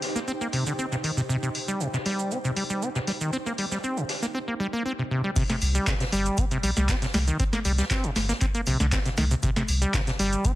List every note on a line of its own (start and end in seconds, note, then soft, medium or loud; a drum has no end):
0.00 4.34 D#4 medium
0.00 4.34 G4 medium
0.00 4.34 C5 medium
0.00 4.35 G5 medium
0.00 snare medium
0.00 open hi-hat loud
0.16 0.20 A#3 loud
0.16 snare soft
0.16 shaker medium
0.28 0.32 C4 medium
0.28 shaker medium
0.41 0.48 A#3 medium
0.41 shaker soft
0.53 0.64 C3 medium
0.53 open hi-hat loud
0.67 0.73 D3 medium
0.67 shaker medium
0.79 0.86 C4 medium
0.79 shaker medium
0.92 0.96 C3 medium
0.92 snare soft
0.92 shaker soft
1.04 1.11 D#3 medium
1.04 open hi-hat loud
1.17 1.21 C3 loud
1.17 shaker medium
1.29 1.37 C3 medium
1.29 shaker medium
1.43 1.49 C3 medium
1.43 shaker soft
1.55 open hi-hat medium
1.68 1.82 G3 medium
1.68 shaker medium
1.80 1.88 C3 medium
1.80 shaker medium
1.94 1.98 C3 medium
1.94 snare medium
1.94 shaker soft
2.06 2.33 G3 loud
2.06 snare soft
2.06 open hi-hat medium
2.19 shaker medium
2.31 2.39 C4 loud
2.31 shaker medium
2.45 2.51 C3 medium
2.45 shaker soft
2.57 2.64 G3 medium
2.57 open hi-hat loud
2.70 2.84 G3 medium
2.70 shaker medium
2.82 2.89 C4 loud
2.82 shaker medium
2.95 2.99 C3 medium
2.95 snare soft
2.95 shaker soft
3.07 3.12 G3 loud
3.07 snare soft
3.07 open hi-hat loud
3.21 3.31 D#3 medium
3.21 shaker medium
3.33 3.37 C4 loud
3.33 shaker medium
3.46 3.53 A#3 medium
3.46 closed hi-hat soft
3.46 shaker soft
3.58 3.66 G3 medium
3.58 open hi-hat loud
3.71 3.78 G3 medium
3.71 snare soft
3.71 shaker medium
3.84 3.99 C4 medium
3.84 shaker medium
3.97 4.04 C3 medium
3.97 shaker soft
4.09 snare medium
4.09 open hi-hat medium
4.22 4.26 A#3 loud
4.22 snare soft
4.22 shaker medium
4.34 4.39 C4 loud
4.48 4.55 A#3 medium
4.60 4.67 G3 loud
4.73 4.83 A#3 loud
4.85 4.93 C4 loud
4.99 5.03 C3 medium
5.11 5.22 C3 medium
5.24 5.31 G3 medium
5.36 5.44 C3 loud
5.36 kick loud
5.36 closed hi-hat loud
5.36 crash loud
5.36 shaker medium
5.50 5.56 C3 medium
5.50 snare medium
5.50 closed hi-hat soft
5.50 shaker soft
5.61 5.78 C2 loud
5.61 open hi-hat loud
5.61 shaker medium
5.75 5.89 G3 medium
5.75 closed hi-hat soft
5.75 shaker medium
5.87 5.94 C3 medium
5.87 kick loud
5.87 snare loud
5.87 clap loud
5.87 closed hi-hat loud
5.87 shaker medium
6.00 6.04 C3 medium
6.00 snare medium
6.00 closed hi-hat soft
6.00 shaker soft
6.12 6.29 G1 loud
6.12 6.39 G3 loud
6.12 open hi-hat loud
6.12 shaker medium
6.26 closed hi-hat soft
6.26 shaker medium
6.37 6.45 C4 medium
6.37 kick loud
6.37 closed hi-hat loud
6.37 shaker medium
6.51 6.58 C3 medium
6.51 closed hi-hat soft
6.51 shaker soft
6.63 6.72 A#1 medium
6.63 6.71 G3 medium
6.63 open hi-hat loud
6.63 shaker medium
6.77 6.92 C2 loud
6.77 6.90 G3 medium
6.77 snare medium
6.77 closed hi-hat soft
6.77 shaker medium
6.88 6.96 C4 loud
6.88 kick loud
6.88 snare loud
6.88 clap loud
6.88 closed hi-hat loud
6.88 shaker loud
6.88 shaker medium
7.02 7.06 C3 medium
7.02 snare soft
7.02 closed hi-hat soft
7.02 shaker soft
7.14 7.31 C2 medium
7.14 7.19 G3 loud
7.14 snare medium
7.14 snare soft
7.14 open hi-hat loud
7.14 shaker medium
7.27 7.38 D#3 medium
7.27 closed hi-hat soft
7.27 shaker medium
7.40 7.44 C4 loud
7.40 kick loud
7.40 closed hi-hat medium
7.40 shaker medium
7.53 7.60 A#3 medium
7.53 snare medium
7.53 closed hi-hat soft
7.53 shaker soft
7.65 7.82 C2 loud
7.65 7.72 G3 medium
7.65 open hi-hat loud
7.65 shaker medium
7.78 7.85 G3 medium
7.78 snare soft
7.78 closed hi-hat soft
7.78 shaker medium
7.90 8.05 C4 medium
7.90 kick loud
7.90 snare loud
7.90 clap loud
7.90 closed hi-hat medium
7.90 shaker medium
8.04 8.11 C3 medium
8.04 closed hi-hat soft
8.04 shaker soft
8.16 8.32 G1 medium
8.16 snare medium
8.16 open hi-hat loud
8.16 shaker medium
8.29 8.33 A#3 loud
8.29 snare soft
8.29 closed hi-hat soft
8.29 shaker medium
8.41 8.46 C4 loud
8.41 kick loud
8.41 clap soft
8.41 closed hi-hat loud
8.41 shaker loud
8.41 shaker medium
8.55 8.61 A#3 medium
8.55 closed hi-hat soft
8.55 shaker soft
8.66 8.75 A#1 medium
8.66 8.78 C3 medium
8.66 open hi-hat loud
8.66 shaker medium
8.80 8.96 C2 loud
8.80 8.87 D3 medium
8.80 snare medium
8.80 closed hi-hat soft
8.80 shaker medium
8.92 9.00 C4 medium
8.92 kick loud
8.92 snare loud
8.92 clap loud
8.92 closed hi-hat medium
8.92 shaker loud
8.92 shaker medium
9.05 9.09 C3 medium
9.05 snare soft
9.05 closed hi-hat soft
9.05 shaker soft
9.17 9.34 C2 medium
9.17 9.25 D#3 medium
9.17 snare medium
9.17 open hi-hat loud
9.17 shaker medium
9.31 9.35 C3 loud
9.31 closed hi-hat soft
9.31 shaker medium
9.43 9.50 C3 loud
9.43 kick loud
9.43 closed hi-hat medium
9.43 shaker loud
9.43 shaker medium
9.56 9.63 C3 medium
9.56 snare medium
9.56 closed hi-hat soft
9.56 shaker soft
9.68 9.85 C2 loud
9.68 open hi-hat loud
9.68 shaker medium
9.82 9.95 G3 medium
9.82 closed hi-hat soft
9.82 shaker medium
9.94 10.01 C3 medium
9.94 kick loud
9.94 snare loud
9.94 clap loud
9.94 closed hi-hat medium
9.94 shaker medium
10.07 10.11 C3 medium
10.07 snare medium
10.07 closed hi-hat soft
10.07 shaker soft
10.19 10.36 G1 loud
10.19 10.46 G3 loud
10.19 open hi-hat loud
10.19 shaker medium
10.33 closed hi-hat soft
10.33 shaker medium
10.45 10.52 C4 loud
10.45 kick loud
10.45 closed hi-hat medium
10.45 shaker medium